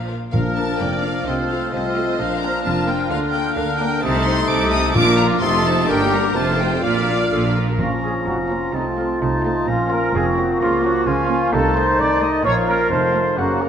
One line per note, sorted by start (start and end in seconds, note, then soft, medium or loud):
0.00 0.13 A#1 soft
0.00 0.12 A#2 soft
0.00 0.12 F3 soft
0.00 0.12 F4 soft
0.08 0.16 A#4 soft
0.31 0.70 A#1 soft
0.31 0.71 A#2 medium
0.31 1.00 A#2 medium
0.31 1.23 F3 soft
0.31 1.23 A#3 soft
0.31 1.23 D4 soft
0.31 1.23 D4 medium
0.31 0.76 A#4 soft
0.31 1.30 A#4 soft
0.31 0.41 F5 medium
0.31 1.23 F6 soft
0.56 0.74 A#3 soft
0.56 0.74 D4 soft
0.56 0.80 A5 medium
0.79 1.17 F1 medium
0.79 1.17 F2 medium
0.79 1.26 D5 medium
0.79 1.04 G5 medium
1.03 1.21 A#3 medium
1.03 1.21 D4 medium
1.03 1.26 F5 medium
1.26 1.64 C2 medium
1.26 1.64 C3 medium
1.26 1.72 F3 soft
1.26 2.18 A3 soft
1.26 1.73 C4 soft
1.26 2.19 F4 soft
1.26 1.73 A4 soft
1.26 1.71 C5 medium
1.26 1.34 D#5 medium
1.26 1.71 F6 soft
1.49 1.67 A3 soft
1.49 1.67 F4 soft
1.49 1.72 F5 medium
1.72 2.10 C2 medium
1.72 2.10 C3 medium
1.72 2.18 F3 soft
1.72 2.21 C4 medium
1.72 2.22 A4 soft
1.72 2.63 C5 medium
1.72 2.17 D#5 medium
1.72 2.18 F6 medium
1.96 2.13 A3 medium
1.96 2.13 F4 medium
2.19 2.56 A#1 soft
2.19 2.55 A#2 medium
2.19 3.12 F3 medium
2.19 4.04 A#3 medium
2.19 3.09 D4 soft
2.19 4.00 D4 medium
2.19 3.10 A#4 medium
2.19 2.42 F5 medium
2.19 3.09 F6 soft
2.42 2.59 A#3 medium
2.42 2.59 D4 medium
2.42 2.65 A#5 medium
2.64 3.01 F1 medium
2.64 3.01 F2 medium
2.64 3.54 F4 medium
2.64 2.87 A5 medium
2.88 3.05 A#3 medium
2.88 3.05 D4 medium
2.88 3.11 G5 medium
3.10 3.47 D2 medium
3.10 3.55 D3 medium
3.10 3.47 D3 medium
3.10 3.55 D4 medium
3.10 3.56 A#4 medium
3.10 3.18 F5 medium
3.10 3.55 F6 medium
3.33 3.51 A#3 soft
3.33 3.51 D4 medium
3.33 3.56 G5 medium
3.56 3.94 D2 medium
3.56 4.04 D3 medium
3.56 3.94 D3 medium
3.56 4.01 D4 medium
3.56 4.02 A#4 medium
3.56 3.79 F5 medium
3.56 4.02 F6 medium
3.79 3.97 A#3 medium
3.79 3.97 D4 medium
3.79 4.02 G5 medium
4.02 4.44 C2 medium
4.02 4.94 C3 medium
4.02 4.44 C3 medium
4.02 4.92 A3 medium
4.02 4.14 C4 medium
4.02 4.96 D#4 medium
4.02 4.14 D#4 medium
4.02 4.92 D#4 medium
4.02 4.99 A4 medium
4.02 4.49 C5 medium
4.02 4.26 A5 medium
4.02 4.93 D#6 medium
4.15 4.26 A3 soft
4.15 4.25 C4 medium
4.25 4.36 C4 soft
4.25 4.38 D#4 soft
4.25 4.49 C6 medium
4.37 4.49 A3 medium
4.37 4.47 C4 soft
4.48 4.90 C2 medium
4.48 4.90 C3 medium
4.48 4.59 C4 medium
4.48 4.60 D#4 medium
4.48 4.94 A4 medium
4.48 4.72 D6 medium
4.60 4.72 A3 medium
4.60 4.70 C4 medium
4.72 4.82 C4 medium
4.72 4.84 D#4 medium
4.72 4.95 D#6 medium
4.83 4.95 A3 soft
4.83 4.95 C4 medium
4.94 5.37 A#1 medium
4.94 5.41 A#2 medium
4.94 5.39 A#2 medium
4.94 5.37 A#2 medium
4.94 5.43 A#3 medium
4.94 5.05 D4 medium
4.94 5.06 F4 medium
4.94 5.41 F4 medium
4.94 5.42 F4 medium
4.94 5.41 F4 medium
4.94 5.42 A#4 medium
4.94 5.18 D6 loud
4.94 5.42 D6 medium
5.06 5.18 A#3 medium
5.06 5.16 D4 medium
5.17 5.28 D4 medium
5.17 5.30 F4 medium
5.17 5.26 A#5 medium
5.29 5.42 A#3 medium
5.29 5.42 D4 medium
5.41 5.84 F1 medium
5.41 5.84 F2 medium
5.41 5.88 C3 medium
5.41 5.90 A3 medium
5.41 5.52 C4 medium
5.41 5.52 D#4 medium
5.41 5.89 D#4 medium
5.41 5.89 F4 medium
5.41 5.89 A4 medium
5.41 5.65 C6 medium
5.41 5.89 D#6 medium
5.52 5.65 A3 medium
5.52 5.65 F4 medium
5.65 5.77 C4 medium
5.65 5.77 D#4 medium
5.65 5.90 A5 medium
5.77 5.89 A3 medium
5.77 5.89 F4 medium
5.88 6.31 G1 medium
5.88 6.31 G2 medium
5.88 6.37 D3 medium
5.88 6.00 G3 medium
5.88 6.36 A#3 medium
5.88 6.36 D4 medium
5.88 6.00 D4 medium
5.88 6.37 G4 medium
5.88 6.35 A#4 medium
5.88 6.38 A#4 medium
5.88 6.13 G5 loud
5.88 6.35 D6 medium
6.01 6.13 A#3 medium
6.01 6.13 G4 medium
6.13 6.25 G3 medium
6.13 6.25 D4 medium
6.13 6.37 A#5 medium
6.25 6.37 A#3 soft
6.25 6.37 G4 soft
6.35 6.78 F1 medium
6.35 6.78 F2 medium
6.35 6.84 C3 medium
6.35 6.48 A3 medium
6.35 6.83 C4 medium
6.35 6.82 F4 medium
6.35 6.83 F4 medium
6.35 6.48 F4 medium
6.35 6.83 C5 medium
6.35 6.60 A5 medium
6.35 6.82 F6 medium
6.48 6.60 C4 soft
6.48 6.60 A4 soft
6.59 6.72 A3 medium
6.59 6.72 F4 medium
6.59 6.84 G5 medium
6.73 6.84 C4 soft
6.73 6.84 A4 soft
6.82 7.26 A#1 medium
6.82 7.55 A#2 medium
6.82 7.26 A#2 medium
6.82 6.95 A#3 medium
6.82 7.55 D4 medium
6.82 7.25 F4 medium
6.82 7.54 F4 medium
6.82 6.95 F4 medium
6.82 7.53 D5 medium
6.82 7.54 D5 medium
6.82 7.55 F5 medium
6.82 7.54 F6 medium
6.96 7.08 D4 soft
6.96 7.08 A#4 soft
7.09 7.20 A#3 soft
7.09 7.20 F4 soft
7.21 7.32 D4 soft
7.21 7.32 A#4 soft
7.31 7.74 A#1 medium
7.31 7.74 A#2 medium
7.31 7.43 A#3 soft
7.31 7.44 F4 soft
7.31 7.42 A4 medium
7.44 7.56 D4 soft
7.44 7.56 A#4 soft
7.55 7.68 A#3 soft
7.55 7.68 F4 soft
7.55 7.66 A#4 medium
7.68 7.80 D4 soft
7.68 7.80 A#4 soft
7.78 8.17 A#1 soft
7.78 8.46 A#2 medium
7.78 8.17 A#2 medium
7.78 8.70 F3 soft
7.78 8.70 C#4 soft
7.78 8.74 C#4 medium
7.78 9.63 F4 soft
7.78 7.90 F4 medium
7.78 8.24 A#5 soft
7.78 8.24 C#6 soft
8.03 8.21 A#3 soft
8.03 8.21 C#4 soft
8.03 8.14 G#4 medium
8.03 8.21 F5 soft
8.26 8.64 F1 medium
8.26 8.64 F2 medium
8.26 8.37 F#4 medium
8.26 8.74 A#5 soft
8.26 8.76 A#5 soft
8.50 8.68 A#3 soft
8.50 8.68 C#4 soft
8.50 8.74 F4 medium
8.50 8.68 F5 soft
8.73 9.11 C2 medium
8.73 9.11 C3 medium
8.73 10.57 F3 soft
8.73 9.67 A3 soft
8.73 9.22 C4 soft
8.73 8.85 D#4 medium
8.73 9.20 A5 soft
8.73 10.14 C6 medium
8.97 9.15 A3 soft
8.97 9.15 C4 soft
8.97 9.08 F4 medium
8.97 9.15 F5 soft
9.20 9.58 C2 medium
9.20 9.58 C3 medium
9.20 9.67 D#4 medium
9.20 9.44 A5 medium
9.44 9.62 A3 medium
9.44 9.62 C4 medium
9.44 9.61 F5 soft
9.44 9.70 A5 medium
9.67 10.04 A#1 medium
9.67 10.05 A#2 medium
9.67 11.53 A#3 medium
9.67 10.13 C#4 medium
9.67 11.49 F4 medium
9.67 9.91 F4 medium
9.67 10.60 A#5 medium
9.90 10.08 A#3 medium
9.90 10.08 C#4 soft
9.90 10.14 A#4 medium
9.90 10.09 F5 medium
10.14 10.51 F1 medium
10.14 10.51 F2 medium
10.14 10.62 C4 medium
10.14 10.25 G#4 medium
10.14 10.60 C#6 medium
10.37 10.54 A#3 medium
10.37 10.54 C#4 medium
10.37 10.60 F#4 medium
10.37 10.55 F5 medium
10.60 10.97 C#2 medium
10.60 10.97 C#3 medium
10.60 11.06 F3 medium
10.60 11.07 A#3 medium
10.60 10.83 F4 medium
10.60 11.08 A#5 medium
10.60 11.05 C#6 medium
10.83 11.00 A#3 medium
10.83 11.01 C#4 medium
10.83 11.06 F#4 medium
10.83 11.01 F5 medium
11.06 11.43 C#2 medium
11.06 11.44 C#3 medium
11.06 11.52 F3 medium
11.06 11.51 C#4 medium
11.06 11.53 F4 medium
11.06 11.53 G#5 medium
11.06 11.52 C#6 medium
11.28 11.47 A#3 medium
11.28 11.46 C#4 medium
11.28 11.47 F5 medium
11.51 11.90 C2 medium
11.51 11.89 C3 medium
11.51 12.46 D#3 medium
11.51 12.43 A3 medium
11.51 12.42 D#4 medium
11.51 12.44 D#4 medium
11.51 11.76 A4 loud
11.51 12.45 A5 medium
11.51 12.42 C6 medium
11.75 11.93 A3 medium
11.75 11.93 D#4 medium
11.75 11.99 C5 medium
11.75 11.93 D#5 medium
11.99 12.35 C2 medium
11.99 12.35 C3 medium
11.99 12.22 D5 medium
12.21 12.38 A3 medium
12.21 12.39 D#4 medium
12.21 12.45 D#5 medium
12.21 12.39 D#5 medium
12.44 12.81 A#1 medium
12.44 12.81 A#2 medium
12.44 12.90 F3 medium
12.44 12.91 A#3 medium
12.44 13.35 F4 medium
12.44 12.90 F4 medium
12.44 12.55 C#5 loud
12.44 13.37 F5 medium
12.44 12.90 A#5 medium
12.67 12.85 A#3 medium
12.67 12.85 C#4 medium
12.67 12.90 A#4 medium
12.67 12.84 F5 medium
12.90 13.28 F1 medium
12.90 13.27 F2 medium
12.90 13.36 D#3 medium
12.90 13.37 A3 medium
12.90 13.38 D#4 medium
12.90 13.37 C5 medium
12.90 13.38 A5 medium
13.13 13.31 A3 medium
13.13 13.32 D#4 medium
13.13 13.31 F5 medium
13.37 13.69 F#1 medium
13.37 13.69 F#2 medium
13.37 13.69 C#3 medium
13.37 13.69 A#3 medium
13.37 13.69 C#4 medium
13.37 13.61 F#4 medium
13.37 13.69 F#5 medium
13.37 13.69 A#5 medium
13.60 13.69 A#3 soft
13.60 13.69 C#4 soft
13.60 13.69 A#4 medium
13.60 13.69 C#5 soft